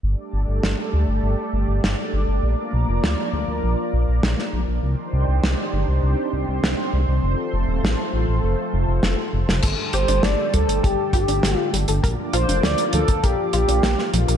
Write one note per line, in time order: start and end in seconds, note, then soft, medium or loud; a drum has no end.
0.03 0.15 G1 loud
0.03 2.41 G3 medium
0.03 2.41 A3 medium
0.03 4.79 D4 medium
0.03 2.41 A4 medium
0.03 4.79 D5 medium
0.33 0.45 G1 medium
0.48 0.60 G1 medium
0.63 0.75 G1 loud
0.63 snare medium
0.93 1.05 D2 medium
1.08 1.20 G1 medium
1.23 1.35 G1 medium
1.53 1.65 G1 medium
1.68 1.80 G1 medium
1.83 1.95 G1 loud
1.83 snare loud
2.13 2.25 G1 medium
2.28 2.40 G1 medium
2.43 2.55 A#1 loud
2.43 4.81 F3 medium
2.43 4.81 A#3 medium
2.43 4.81 A#4 medium
2.73 2.85 A#1 medium
2.88 3.00 F1 medium
3.03 3.15 D2 medium
3.03 snare loud
3.33 3.45 D2 medium
3.48 3.60 D2 medium
3.63 3.75 A#1 loud
3.93 4.05 A#1 medium
4.08 4.20 A#1 medium
4.23 4.35 A#1 loud
4.23 snare loud
4.39 snare soft
4.53 4.65 A#1 medium
4.68 4.80 A#1 medium
4.83 4.95 C2 loud
4.83 7.21 D#3 medium
4.83 9.59 C4 medium
4.83 7.21 D4 medium
4.83 7.21 G4 medium
4.83 9.59 C5 medium
5.13 5.25 C2 medium
5.28 5.40 C2 medium
5.43 5.55 C2 loud
5.43 snare loud
5.73 5.85 G1 medium
5.88 6.00 C2 medium
6.03 6.15 C2 loud
6.33 6.45 C2 medium
6.48 6.60 C2 medium
6.63 6.75 C2 medium
6.63 snare loud
6.93 7.05 C2 medium
7.08 7.20 C2 medium
7.23 7.35 F1 loud
7.23 9.61 F3 medium
7.23 9.61 A3 medium
7.23 9.61 A4 medium
7.53 7.65 F1 medium
7.68 7.80 D#1 medium
7.83 7.95 A1 medium
7.83 snare loud
8.13 8.25 A1 medium
8.28 8.40 A1 medium
8.43 8.55 F1 loud
8.73 8.85 F1 medium
8.88 9.00 F1 medium
9.03 9.15 F1 medium
9.03 snare loud
9.33 9.45 F1 medium
9.48 9.60 F1 medium
9.48 snare medium
9.62 9.75 G1 loud
9.62 14.37 D3 medium
9.62 12.01 G3 medium
9.62 12.01 A3 medium
9.62 12.01 G4 medium
9.62 9.76 A4 loud
9.62 12.01 A4 medium
9.62 kick loud
9.62 closed hi-hat medium
9.62 crash medium
9.93 10.05 G1 medium
9.93 10.01 G4 loud
9.93 10.25 C5 loud
9.93 closed hi-hat medium
10.08 10.20 G1 medium
10.08 10.21 D4 medium
10.08 closed hi-hat medium
10.23 10.35 G1 loud
10.23 10.36 A3 medium
10.23 10.53 D5 loud
10.23 snare loud
10.23 closed hi-hat medium
10.54 10.66 D2 medium
10.54 10.61 G3 medium
10.54 10.81 A4 loud
10.54 kick medium
10.54 closed hi-hat medium
10.68 10.80 G1 medium
10.68 10.81 A4 medium
10.68 closed hi-hat medium
10.84 10.96 G1 loud
10.84 11.12 G4 medium
10.84 10.96 A4 loud
10.84 kick loud
10.84 closed hi-hat medium
11.13 11.25 G1 medium
11.13 11.21 G4 loud
11.13 11.57 G4 medium
11.13 kick loud
11.13 closed hi-hat medium
11.28 11.40 G1 medium
11.28 11.41 D4 medium
11.28 closed hi-hat medium
11.43 11.55 G1 loud
11.43 11.56 A3 medium
11.43 snare loud
11.43 closed hi-hat loud
11.57 11.70 F4 medium
11.74 11.85 G1 medium
11.74 11.81 G3 medium
11.74 closed hi-hat medium
11.88 12.00 G1 medium
11.88 12.01 A4 medium
11.88 closed hi-hat medium
12.03 12.15 A#1 loud
12.03 14.37 F3 medium
12.03 14.37 A#3 medium
12.03 14.37 F4 medium
12.03 12.16 A#4 loud
12.03 14.37 D5 medium
12.03 kick loud
12.03 closed hi-hat medium
12.33 12.45 A#1 medium
12.33 12.41 F4 loud
12.33 12.65 C5 loud
12.33 closed hi-hat medium
12.48 12.60 F1 medium
12.48 12.61 D4 medium
12.48 closed hi-hat medium
12.63 12.75 D2 loud
12.63 12.76 A#3 medium
12.63 12.93 D5 loud
12.63 snare loud
12.63 closed hi-hat medium
12.78 closed hi-hat medium
12.93 13.05 D2 medium
12.93 13.01 F3 medium
12.93 13.25 A4 loud
12.93 closed hi-hat medium
13.08 13.20 D2 medium
13.08 13.21 A#4 medium
13.08 kick loud
13.08 closed hi-hat medium
13.23 13.35 A#1 loud
13.23 13.53 G4 loud
13.23 13.36 A#4 loud
13.23 kick loud
13.23 closed hi-hat medium
13.53 13.65 A#1 medium
13.53 13.61 F4 loud
13.53 14.09 G4 medium
13.53 closed hi-hat medium
13.68 13.80 A#1 medium
13.68 13.81 D4 medium
13.68 closed hi-hat medium
13.83 13.95 A#1 loud
13.83 13.96 A#3 medium
13.83 snare loud
13.83 closed hi-hat medium
13.99 snare soft
14.13 14.25 A#1 medium
14.13 14.21 F3 medium
14.13 closed hi-hat medium
14.28 14.37 A#1 medium
14.28 14.37 A#4 medium
14.28 closed hi-hat medium